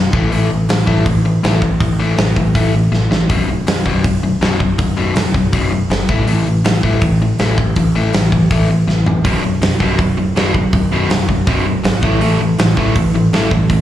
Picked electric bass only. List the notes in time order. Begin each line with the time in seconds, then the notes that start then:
Already playing: B0
0.13 A1
0.33 A1
0.51 A1
0.70 A1
0.87 A1
1.06 A1
1.44 A1
1.62 A1
1.80 A1
1.99 A1
2.18 A1
2.37 A1
2.55 A1
2.92 A1
3.11 A1
3.30 B0
3.48 B0
3.66 B0
3.86 B0
4.05 B0
4.42 B0
4.61 B0
4.79 B0
4.98 B0
5.16 B0
5.35 B0
5.53 B0
5.90 G1
6.09 A1
6.28 A1
6.46 A1
6.65 A1
6.83 A1
7.02 A1
7.41 A1
7.58 A1
7.77 A1
7.96 A1
8.14 A1
8.32 A1
8.51 A1
8.88 A1
9.06 A1
9.25 B0
9.42 B0
9.62 B0
9.80 B0
9.99 B0
10.35 B0
10.55 B0
10.73 B0
10.91 B0
11.11 B0
11.29 B0
11.47 B0
11.85 G#1
12.03 A1
12.21 A1
12.40 A1
12.59 A1
12.77 A1
12.96 A1
13.33 A1
13.51 A1
13.70 A1